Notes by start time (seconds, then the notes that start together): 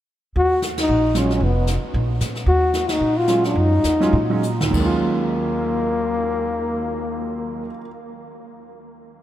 0.36 D#2 F#4, brush sweep, kick
0.62 snare, hi-hat pedal
0.78 D#4, snare, ride
0.88 A#1, brush sweep
1.15 F#3 G#3 C#4 F4, snare, hi-hat pedal
1.19 C#4
1.30 snare
1.35 C#4
1.41 F1 B3, brush sweep, kick
1.67 snare, hi-hat pedal
1.84 muted upright bass stroke
1.94 A#1, brush sweep, kick
2.21 A#2, snare, hi-hat pedal
2.35 snare
2.46 D#2 F#4, brush sweep, kick
2.73 snare, hi-hat pedal
2.89 D#4, snare, ride
3.01 A#2, brush sweep
3.17 F4
3.27 F#3 G#3 C#4 F4, snare, hi-hat pedal
3.44 D#4, snare
3.55 F#2, brush sweep, kick
3.84 E2, snare, hi-hat pedal
4.00 F#3 G#3 C#4 F4, snare
4.13 A#2, brush sweep, kick
4.30 F#3 G#3 C#4 D#4
4.43 hi-hat pedal
4.61 D#2, snare
4.65 D#3
4.71 D#2 F#3, kick, crash
4.75 G#3 A#3
4.80 C#4
4.86 F4